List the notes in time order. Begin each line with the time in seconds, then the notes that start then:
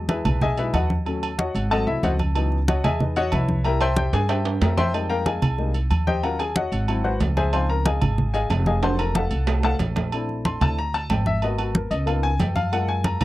Already playing: E2 F#3 G#3 D#5
0.09 E4 G#4 B4 E5, high conga, low agogo
0.25 B1, high conga, low conga, low agogo
0.41 G#4 D#5 E5 G#5, high conga, low conga
0.58 F#3 G#3 D#4 E4 G#4 B4 E5, high conga, low agogo
0.74 D#2 F#4 B4 D#5 F#5, high conga, low agogo
0.90 high conga
1.06 F#3 A3 C#4, high conga, low agogo
1.23 high conga, low agogo
1.38 F#4 C#5 D#5 F#5, high conga
1.55 G#1, high conga, low agogo
1.70 F#3 A3 C4 A4 D#5 F#5 A5, high conga, low agogo
1.87 C2 E4 E5, high conga
2.03 C#2 F#4 C5 D#5 F#5, high conga, low agogo
2.19 high conga, low agogo
2.35 E3 F#3 B3 D#4, high conga, low agogo
2.52 high conga
2.68 F#4 C#5 D#5 F#5, high conga, low agogo
2.84 E2 G#4 D#5 E5 G#5, high conga, low conga, low agogo
3.00 D#4 G#4 B4 D#5, high conga, low conga
3.16 F#4 C#5 D#5 F#5, high conga, low agogo
3.32 C2 E4 B4 C#5 E5, high conga, low agogo
3.49 high conga
3.64 G3 A#3 E4 A#4 E5 G5 A#5, high conga, low agogo
3.81 C5 E5 G5 C6, high conga, low agogo
3.96 G4 C5 E5 G5, high conga
4.13 G2 G#4 G#5, high conga, high timbale, low agogo
4.29 G4 C5 E5 G5, high conga, high timbale, low agogo
4.45 high conga, high timbale
4.61 F2 A#4 E5 G5 A#5, high conga, low timbale, low agogo
4.77 C5 E5 G5 C6, high conga, low timbale, low agogo
4.93 G3 G#3 A#3 D#4 G4 C5 D#5 G5, high conga, low agogo
5.10 A#4 F5 G5 A#5, high conga
5.26 G#4 D#5 F5 G#5, high conga, low agogo
5.42 C2, high conga, low conga, low agogo
5.58 G3 G#3 A#3 D#4, high conga
5.74 high conga, low agogo
5.90 D#2, high conga, low agogo
6.07 G4 C5 D#5 G5, high conga
6.23 F#3 C#4 F4 A#4 F5 F#5 A#5, high conga, low agogo
6.39 G#4 G#5, high conga, low agogo
6.56 F#4 C#5 D#5 F#5, high conga
6.72 G#1, high conga, low agogo
6.88 F#3 C4 E4, high conga, low agogo
7.04 F#4 B4 C5 F#5, high conga
7.20 C#2, high conga, low timbale, low agogo
7.37 G#4 C5 E5 G#5, high conga, low agogo
7.52 F3 C4 D#4 C5 F5 G#5 C6, high conga, low agogo
7.69 A#4 A#5, high conga
7.86 G#4 D#5 F5 G#5, high conga, low agogo
8.01 G#1, high conga, low conga, low agogo
8.18 high conga, low conga
8.34 G#4 D#5 F5 G#5, high conga, low agogo
8.50 F1, high conga, low timbale, low agogo
8.66 G#4 D#5 F5 G#5, high conga
8.82 F#3 A3 D#4 C5 F#5 A5 C6, high conga, high timbale, low agogo
8.99 A#4 A#5, high conga, low agogo
9.15 A4 F5 F#5 A5, high conga, low timbale
9.31 C2, high conga, low agogo
9.47 high conga, low timbale, low agogo
9.63 A4 F5 F#5 A5, high conga, low timbale
9.79 A#1, high conga, low timbale, low agogo
9.96 high conga, low timbale, low agogo
10.12 A3 C4 D4 E4, high conga, low agogo
10.29 high conga
10.45 C6, high conga, low agogo
10.61 D2 A3 C4 D4 E4 A5, high conga, low conga, low agogo
10.78 A#5, high conga
10.94 A5, high conga, low agogo
11.09 G#1 G5, high conga, low timbale, low agogo
11.26 E5, high conga
11.42 A#3 B3 F#4 D#5, high conga, low agogo
11.58 F#4, high conga, low agogo
11.75 A#4, high conga
11.91 C#2 D#5, high conga, low agogo
12.06 A#3 B3 D#4 F4 F5, high conga, low agogo
12.23 G#5, high conga
12.39 F#2 G5, high conga, low timbale, low agogo
12.56 F5, high conga, low agogo
12.72 G#3 A#3 F4 F#5, high conga, low agogo
12.88 G#5, high conga
13.04 A#5, high conga, low agogo
13.21 C#2 G#3, high conga, low conga, low agogo